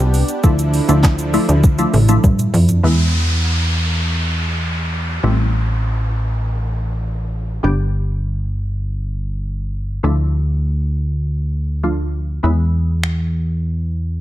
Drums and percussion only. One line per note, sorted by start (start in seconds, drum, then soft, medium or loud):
0.14 open hi-hat medium
0.14 shaker medium
0.28 closed hi-hat medium
0.28 shaker medium
0.44 kick loud
0.44 shaker medium
0.59 closed hi-hat medium
0.59 shaker medium
0.74 open hi-hat medium
0.74 shaker medium
0.89 closed hi-hat medium
0.89 shaker medium
1.03 kick loud
1.03 snare medium
1.03 clap loud
1.03 shaker medium
1.19 closed hi-hat medium
1.19 shaker medium
1.34 open hi-hat medium
1.34 shaker medium
1.49 closed hi-hat medium
1.49 shaker medium
1.64 kick loud
1.64 high tom medium
1.64 shaker medium
1.79 closed hi-hat medium
1.79 shaker medium
1.94 open hi-hat medium
1.94 mid tom medium
1.94 shaker medium
2.09 closed hi-hat medium
2.09 shaker medium
2.24 kick loud
2.24 mid tom medium
2.24 shaker medium
2.39 closed hi-hat medium
2.39 mid tom medium
2.39 shaker medium
2.54 floor tom loud
2.54 open hi-hat medium
2.54 shaker medium
2.69 closed hi-hat medium
2.69 floor tom medium
2.69 shaker medium
13.03 finger snap loud